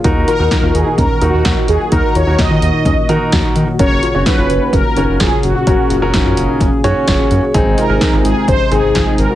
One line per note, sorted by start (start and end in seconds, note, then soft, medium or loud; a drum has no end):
0.00 7.50 A#2 medium
0.04 0.13 D#2 loud
0.04 3.76 D#3 medium
0.04 0.32 D#4 medium
0.04 0.24 D#4 medium
0.04 0.32 F#4 medium
0.04 5.63 F#4 medium
0.04 0.32 A#4 medium
0.04 kick loud
0.04 closed hi-hat medium
0.16 0.25 D#2 medium
0.28 0.47 F4 medium
0.28 0.76 A#4 medium
0.28 closed hi-hat medium
0.40 0.49 D#2 medium
0.40 1.05 D#4 medium
0.40 1.05 F#4 medium
0.40 1.05 A#4 medium
0.51 0.61 D#4 medium
0.51 kick loud
0.51 snare loud
0.51 closed hi-hat medium
0.63 0.72 D#2 loud
0.63 0.82 F4 medium
0.75 0.84 D#2 loud
0.75 0.97 G#4 medium
0.75 closed hi-hat medium
0.86 0.96 D#4 medium
0.98 1.07 D#2 loud
0.98 1.17 C#4 medium
0.98 1.23 A#4 medium
0.98 kick loud
0.98 closed hi-hat medium
1.22 1.31 D#2 loud
1.22 1.41 D#4 medium
1.22 1.78 D#4 medium
1.22 1.78 F#4 medium
1.22 1.65 F#4 loud
1.22 1.78 A#4 medium
1.22 closed hi-hat medium
1.33 1.42 D#2 medium
1.45 1.54 D#2 loud
1.45 1.55 F#4 medium
1.45 kick loud
1.45 snare loud
1.45 closed hi-hat medium
1.57 1.76 D#4 medium
1.68 1.77 D#2 loud
1.68 1.93 G#4 medium
1.68 closed hi-hat medium
1.80 1.90 F#4 medium
1.92 2.01 D#2 loud
1.92 2.11 D#4 medium
1.92 2.20 D#4 medium
1.92 2.20 F#4 medium
1.92 2.20 A#4 medium
1.92 2.16 A#4 loud
1.92 kick loud
1.92 closed hi-hat medium
2.15 2.24 D#2 loud
2.15 2.35 F4 medium
2.15 2.37 C#5 loud
2.15 closed hi-hat medium
2.27 2.36 D#2 medium
2.27 2.92 D#4 medium
2.27 2.92 F#4 medium
2.27 2.92 A#4 medium
2.39 2.48 D#2 loud
2.39 2.48 D#4 medium
2.39 3.52 D#5 loud
2.39 kick loud
2.39 snare loud
2.39 closed hi-hat medium
2.50 2.59 D#3 loud
2.50 2.70 F4 medium
2.62 2.71 D#2 loud
2.62 closed hi-hat medium
2.74 2.83 D#4 medium
2.85 2.94 D#2 loud
2.85 3.05 C#4 medium
2.85 kick loud
2.85 closed hi-hat medium
3.09 3.18 D#3 loud
3.09 3.28 D#4 medium
3.09 3.65 D#4 medium
3.09 3.65 F#4 medium
3.09 3.65 A#4 medium
3.09 closed hi-hat medium
3.32 3.42 D#2 loud
3.32 3.42 F#4 medium
3.32 kick loud
3.32 snare loud
3.32 closed hi-hat medium
3.44 3.63 D#4 medium
3.56 3.65 D#3 medium
3.56 closed hi-hat medium
3.68 3.77 F#4 medium
3.79 3.88 F#1 loud
3.79 7.51 C#3 medium
3.79 4.07 C#4 medium
3.79 3.99 C#4 loud
3.79 4.07 F#4 medium
3.79 4.07 A#4 medium
3.79 4.28 C#5 loud
3.79 kick loud
3.79 closed hi-hat medium
3.91 4.00 F#1 medium
4.03 4.22 F4 medium
4.03 closed hi-hat medium
4.15 4.24 F#1 medium
4.15 4.80 C#4 medium
4.15 4.80 F#4 medium
4.15 4.80 C#5 medium
4.26 4.36 D#4 medium
4.26 4.75 B4 loud
4.26 kick loud
4.26 snare loud
4.26 closed hi-hat medium
4.38 4.47 F#1 medium
4.38 4.57 F4 medium
4.50 4.59 F#1 loud
4.50 closed hi-hat medium
4.62 4.71 D#4 medium
4.73 4.82 F#1 medium
4.73 4.92 C#4 medium
4.73 5.22 A#4 loud
4.73 kick loud
4.73 closed hi-hat medium
4.97 5.06 F#1 loud
4.97 5.53 C#4 medium
4.97 5.16 D#4 medium
4.97 5.53 F#4 medium
4.97 5.53 A#4 medium
4.97 closed hi-hat medium
5.09 5.17 F#1 medium
5.20 5.29 F#1 loud
5.20 5.30 F4 medium
5.20 5.44 G#4 medium
5.20 kick loud
5.20 snare loud
5.20 closed hi-hat medium
5.32 5.51 C#4 medium
5.43 5.53 F#1 loud
5.43 6.80 F#4 medium
5.43 closed hi-hat medium
5.55 5.65 F#4 medium
5.67 5.76 F#1 loud
5.67 5.86 C#4 medium
5.67 5.95 C#4 medium
5.67 5.95 F#4 medium
5.67 7.53 G#4 medium
5.67 5.95 A#4 medium
5.67 kick loud
5.67 closed hi-hat medium
5.90 5.99 F#1 loud
5.90 6.10 F4 medium
5.90 closed hi-hat medium
6.02 6.11 F#1 loud
6.02 6.67 C#4 medium
6.02 6.67 F#4 medium
6.02 6.67 A#4 loud
6.14 6.23 F#1 loud
6.14 6.23 D#4 medium
6.14 kick loud
6.14 snare loud
6.14 closed hi-hat medium
6.25 6.35 F#2 medium
6.25 6.45 F4 medium
6.37 6.46 F#1 loud
6.37 closed hi-hat medium
6.49 6.59 D#4 medium
6.61 6.70 F#1 loud
6.61 6.80 C#4 medium
6.61 kick loud
6.61 closed hi-hat medium
6.84 6.93 F#2 loud
6.84 7.40 C#4 medium
6.84 7.03 D#4 medium
6.84 7.40 F#4 medium
6.84 7.06 C#5 loud
6.84 closed hi-hat medium
7.08 7.17 F#1 loud
7.08 7.17 F4 medium
7.08 7.51 C#5 medium
7.08 kick loud
7.08 snare loud
7.08 closed hi-hat medium
7.19 7.38 C#4 medium
7.31 7.40 F#2 loud
7.31 closed hi-hat medium
7.43 7.52 F#4 medium
7.54 7.63 G#1 loud
7.54 9.35 C3 medium
7.54 9.35 G#3 medium
7.54 7.82 C4 medium
7.54 7.74 D#4 medium
7.54 7.83 D#4 medium
7.54 9.35 D#4 medium
7.54 7.83 G#4 loud
7.54 kick loud
7.54 closed hi-hat medium
7.66 7.75 G#1 loud
7.78 7.97 F4 medium
7.78 8.22 A#4 loud
7.78 closed hi-hat medium
7.90 7.98 G#1 loud
7.90 8.55 C4 medium
7.90 8.55 D#4 medium
7.90 8.55 G#4 medium
8.01 8.11 D#4 medium
8.01 kick loud
8.01 snare loud
8.01 closed hi-hat medium
8.13 8.22 G#1 loud
8.13 8.32 F4 medium
8.25 8.34 G#1 medium
8.25 8.47 G#4 medium
8.25 closed hi-hat medium
8.37 8.46 D#4 medium
8.48 8.57 G#1 loud
8.48 8.67 C#4 medium
8.48 8.73 C5 loud
8.48 kick loud
8.48 closed hi-hat medium
8.71 8.80 G#1 loud
8.71 9.28 C4 medium
8.71 9.28 D#4 medium
8.71 8.91 D#4 medium
8.71 9.28 G#4 medium
8.71 9.20 G#4 loud
8.71 closed hi-hat medium
8.83 8.92 G#1 medium
8.95 9.04 G#1 loud
8.95 9.05 F4 medium
8.95 kick loud
8.95 snare loud
8.95 closed hi-hat medium
9.07 9.26 D#4 medium
9.18 9.27 G#1 loud
9.18 9.35 A#4 medium
9.18 closed hi-hat medium
9.30 9.35 F#4 medium